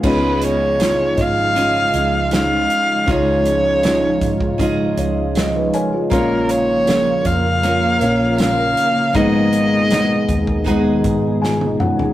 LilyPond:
<<
  \new Staff \with { instrumentName = "Violin" } { \time 4/4 \key cis \mixolydian \tempo 4 = 79 b'8 cis''4 eis''4. eis''4 | cis''2 r2 | ais'8 cis''4 eis''4. eis''4 | dis''2 r2 | }
  \new Staff \with { instrumentName = "Steel-string acoustic guitar" } { \time 4/4 \key cis \mixolydian <cis' eis' gis' dis''>4. <eis' gis' dis''>8 <cis' eis' gis' dis''>8 <eis' gis' dis''>4. | <cis' eis' gis' dis''>2 <cis' eis' gis' dis''>2 | <ais cis' eis' cis''>2 <ais cis' eis' cis''>8 <cis' eis' cis''>4. | <gis dis' gis' b' dis''>2 <gis dis' gis' b' dis''>2 | }
  \new Staff \with { instrumentName = "Felt piano" } { \time 4/4 \key cis \mixolydian << { r1 | r2 r8 cis''8 dis''16 <b' dis''>16 <ais' cis'' gis''>16 <eis' gis'>16~ | <eis' gis'>16 r2. r8. | r2. <eis' gis' gis''>8 <cis' eis' fis''>16 <b dis'>16 | } \\ { <cis' dis' eis'>4 <cis' dis' eis'>4 <cis' dis' eis'>4 <cis' dis' eis'>4 | <cis' dis' eis'>4 <cis' dis' eis'>4 <cis' dis' eis'>4 r4 | <ais cis' eis'>4 <ais cis' gis'>4 <ais cis' eis'>4 <ais cis' eis'>4 | <gis b dis'>4 <gis b dis'>4 <gis b dis'>4 r4 | } >> }
  \new Staff \with { instrumentName = "Felt piano" } { \clef bass \time 4/4 \key cis \mixolydian cis4. r2 r8 | cis4. r2 r8 | ais,4. r2 r8 | gis,4. r2 r8 | }
  \new Staff \with { instrumentName = "Ambient pad" } { \time 4/4 \key cis \mixolydian << { <cis gis dis' eis'>1~ | <cis gis dis' eis'>1 | <cis ais eis' ais'>1 | <b, gis dis' gis'>1 | } \\ { eis1~ | eis1~ | eis1 | dis1 | } >> }
  \new Staff \with { instrumentName = "Fingered electric bass" } { \clef bass \time 4/4 \key cis \mixolydian cis,4. gis,,4 cis,4 r8 | cis,4. gis,,4 cis,4 r8 | ais,,4. eis,4 ais,,4 r8 | gis,,4. dis,4 gis,,4 r8 | }
  \new DrumStaff \with { instrumentName = "Drums" } \drummode { \time 4/4 <cymc bd>8 hh8 <hh sn>8 <hh bd>8 hh8 hh8 <hh sn>8 hh8 | <hh bd>8 hh8 <hh sn>8 <hh bd>16 bd16 <hh bd>8 hh8 <hh sn>8 hh8 | <hh bd>8 hh8 <hh sn>8 <hh bd>8 hh8 hh8 <hh sn>8 hh8 | <hh bd>8 hh8 <hh sn>8 <hh bd>16 bd16 <hh bd>8 <hh bd>8 sn16 tommh16 toml16 tomfh16 | }
>>